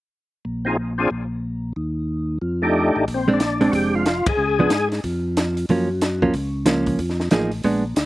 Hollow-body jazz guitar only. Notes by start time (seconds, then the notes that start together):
3.28 G#3 C4 D4
3.61 G#3 C4 D4
4.59 F3 B3 D4
5.70 F3 A#3 C#4
6.22 F3 A#3 C#4
6.66 F3 A#3 C#4
7.31 F3 A#3 D#4 G#4
7.64 G#3 B3 D4